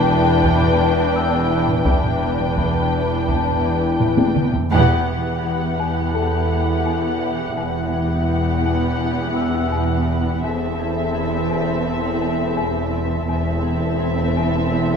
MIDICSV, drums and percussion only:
0, 0, Header, 1, 2, 480
1, 0, Start_track
1, 0, Key_signature, 1, "minor"
1, 0, Tempo, 714286
1, 1251, Time_signature, 4, 2, 24, 8
1, 10058, End_track
2, 0, Start_track
2, 0, Title_t, "Taiko and cinematic ensemble drums"
2, 291, Note_on_c, 9, 41, 64
2, 358, Note_off_c, 9, 41, 0
2, 412, Note_on_c, 9, 45, 41
2, 479, Note_off_c, 9, 45, 0
2, 1130, Note_on_c, 9, 45, 43
2, 1198, Note_off_c, 9, 45, 0
2, 1245, Note_on_c, 9, 41, 81
2, 1313, Note_off_c, 9, 41, 0
2, 1369, Note_on_c, 9, 45, 44
2, 1436, Note_off_c, 9, 45, 0
2, 1607, Note_on_c, 9, 45, 46
2, 1675, Note_off_c, 9, 45, 0
2, 1728, Note_on_c, 9, 41, 66
2, 1796, Note_off_c, 9, 41, 0
2, 2210, Note_on_c, 9, 41, 59
2, 2277, Note_off_c, 9, 41, 0
2, 2328, Note_on_c, 9, 45, 42
2, 2395, Note_off_c, 9, 45, 0
2, 2689, Note_on_c, 9, 45, 76
2, 2756, Note_off_c, 9, 45, 0
2, 2810, Note_on_c, 9, 48, 77
2, 2877, Note_off_c, 9, 48, 0
2, 2931, Note_on_c, 9, 47, 80
2, 2998, Note_off_c, 9, 47, 0
2, 3053, Note_on_c, 9, 43, 87
2, 3121, Note_off_c, 9, 43, 0
2, 10058, End_track
0, 0, End_of_file